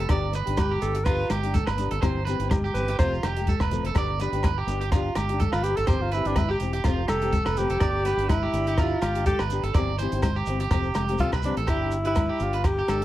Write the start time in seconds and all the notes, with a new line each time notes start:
0.09 G1 B3 D4 G4 D5, kick, cross-stick, closed hi-hat, muted conga, low agogo, shekere
0.32 B3 D4 B4, muted steel-string acoustic guitar stroke, closed hi-hat, muted conga, shekere
0.45 G1 D4 G4, closed hi-hat, shekere
0.57 G4 B4, kick, cross-stick, closed hi-hat, high conga, low agogo, shekere
0.71 G4
0.81 G1 B3 D4 G4 A4, closed hi-hat, shekere
0.95 muted clean electric guitar stroke, closed hi-hat, shekere
1.05 B3 D4 F4 B4, kick, cross-stick, closed hi-hat, muted conga, low agogo, shekere
1.09 G4
1.30 G1 G4, cross-stick, closed hi-hat, high conga, low agogo, shekere
1.42 D4 G4, closed hi-hat
1.54 A4, kick, closed hi-hat, high conga, shekere
1.67 G1 B4, cross-stick, low agogo, shekere
1.76 B3 D4 G4, closed hi-hat, muted conga, shekere
1.91 G1 A4, closed hi-hat
2.02 G1 E3 C4 E4 G4 C5, kick, cross-stick, closed hi-hat, muted conga, low agogo, shekere
2.25 E3 C4 E4 G4 B4, closed hi-hat, muted conga, shekere
2.39 G1 C4 E4 G4, closed hi-hat, shekere
2.50 G4, muted clean electric guitar stroke, kick, cross-stick, closed hi-hat, high conga, low agogo, shekere
2.64 G4, shekere
2.74 G1 E3 C4 E4 B4, closed hi-hat, shekere
2.78 G4
2.88 G4, closed hi-hat, shekere
2.98 F1 F3 A3 C4 F4 G4 C5, kick, cross-stick, closed hi-hat, muted conga, low agogo, shekere
3.14 shekere
3.23 F1 G4, cross-stick, closed hi-hat, high conga, low conga, low agogo
3.36 A3 G4, muted steel-string acoustic guitar stroke, closed hi-hat, shekere
3.47 A4, kick, closed hi-hat, high conga, shekere
3.60 F1 B4, kick, cross-stick, low agogo
3.71 F3 A3 C4, closed hi-hat, muted conga, low conga, shekere
3.84 F1 A4, closed hi-hat, shekere
3.94 G1 B3 D4 G4 D5, kick, cross-stick, closed hi-hat, muted conga, low agogo, shekere
4.18 B3 D4 G4 B4, closed hi-hat, muted conga, shekere
4.32 G1 D4 G4, closed hi-hat, shekere
4.43 B4, kick, cross-stick, closed hi-hat, high conga, low agogo, shekere
4.58 G4
4.67 G1 B3 D4, closed hi-hat, shekere
4.71 G4
4.81 G4, closed hi-hat, shekere
4.92 B3 D4 F4 G4, kick, cross-stick, closed hi-hat, muted conga, low agogo, shekere
5.15 G1 G4, cross-stick, closed hi-hat, high conga, low agogo, shekere
5.29 G4, closed hi-hat
5.33 D4
5.40 A4, kick, closed hi-hat, high conga, shekere
5.52 G1 F4 B4, cross-stick, low agogo, shekere
5.63 B3 D4 G4, closed hi-hat, shekere
5.67 G4
5.76 G1 A4, closed hi-hat
5.87 G1 E3 C4 E4 G4 C5, kick, cross-stick, closed hi-hat, muted conga, low agogo, shekere
6.01 F4
6.12 E3 C4 E4 B4, closed hi-hat, muted conga, shekere
6.16 G4
6.25 G1 C4 D4 E4 G4, closed hi-hat, shekere
6.36 E4 B4, kick, cross-stick, closed hi-hat, high conga, low agogo, shekere
6.49 G4
6.60 E1 E3 C4 E4 G4, closed hi-hat, shekere
6.73 G4, closed hi-hat, shekere
6.84 F1 F3 A3 C4 F4 G4, kick, cross-stick, closed hi-hat, low agogo, shekere
7.08 F1 G4 A4, cross-stick, closed hi-hat, high conga, low conga, low agogo, shekere
7.22 A3 C4 G4, closed hi-hat
7.32 A4, kick, closed hi-hat, high conga, shekere
7.46 F1 B4, cross-stick, low agogo, shekere
7.57 F3 A3 C4 G4, closed hi-hat, muted conga, low conga, shekere
7.70 F1 A4, closed hi-hat
7.80 G1 B3 D4 G4 D5, kick, cross-stick, closed hi-hat, muted conga, low agogo, shekere
8.05 B3 D4 G4 B4, closed hi-hat, muted conga, shekere
8.17 G1, closed hi-hat, shekere
8.22 D4
8.29 E4 B4, kick, cross-stick, closed hi-hat, high conga, low agogo, shekere
8.43 G4
8.53 G1 B3 D4 G4, closed hi-hat, shekere
8.67 G4, closed hi-hat, shekere
8.78 B3 D4 F4 G4, kick, cross-stick, closed hi-hat, muted conga, low agogo, shekere
9.02 G1 F4 G4, cross-stick, closed hi-hat, high conga, low agogo, shekere
9.15 D4 G4, closed hi-hat
9.26 G4 A4, kick, closed hi-hat, high conga, shekere
9.39 G1 B4, cross-stick, low agogo, shekere
9.50 B3 D4 G4, closed hi-hat, shekere
9.63 G1 A4, closed hi-hat
9.74 G1 E3 C4 E4 G4 D5, kick, cross-stick, closed hi-hat, muted conga, low agogo, shekere
9.98 E3 C4 E4 G4 C5, closed hi-hat, muted conga, shekere
10.12 G1 E4 G4, closed hi-hat, shekere
10.16 C4
10.22 C5, kick, cross-stick, closed hi-hat, high conga, low agogo, shekere
10.36 G4, shekere
10.46 G1 E3 C4 E4, closed hi-hat, shekere
10.50 G4
10.60 G4, closed hi-hat, shekere
10.70 F1 F3 A3 C4 G4, kick, cross-stick, closed hi-hat, muted conga, low agogo, shekere
10.83 shekere
10.94 F1 G4, cross-stick, closed hi-hat, high conga, low conga, low agogo, shekere
11.08 C4 G4, closed hi-hat, shekere
11.12 A3
11.18 C2 E3 C4 D4 F4 G4 A4, kick, closed hi-hat, high conga, shekere
11.32 C2 B4, kick, cross-stick, low agogo, shekere
11.42 E3 C4 D4 G4, closed hi-hat, muted conga, low conga, shekere
11.57 A1 A4, closed hi-hat
11.67 G1 D4 E4 G4, muted steel-string acoustic guitar stroke, kick, cross-stick, closed hi-hat, muted conga, low agogo, shekere
11.81 D4 G4
11.91 closed hi-hat, shekere
12.05 D4 E4 G4 B4, closed hi-hat, shekere
12.15 kick, cross-stick, closed hi-hat, high conga, low agogo, shekere
12.29 G4
12.39 G1 B3 D4 F4 G4, closed hi-hat, shekere
12.53 B4, closed hi-hat, shekere
12.64 G4, muted clean electric guitar stroke, kick, cross-stick, closed hi-hat, muted conga, low agogo, shekere
12.78 G4, shekere
12.87 G1 B3 D4 A4, muted steel-string acoustic guitar stroke, cross-stick, closed hi-hat, muted conga, high conga, low agogo, shekere
13.01 G4, shekere